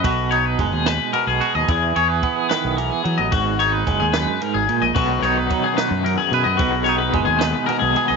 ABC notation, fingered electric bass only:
X:1
M:6/8
L:1/16
Q:3/8=73
K:G#m
V:1 name="Fingered electric bass" clef=bass
B,,,4 F,,, D,,2 z2 B,,, z D,, | E,,2 E,,2 z3 B,,,2 z E, =A,,, | G,,,4 F,,, D,,2 z2 G,,, z A,,, | B,,,2 B,,,2 z3 F,,2 z B,, F,, |
B,,,4 F,,, D,,2 z2 B,,, z B,,, |]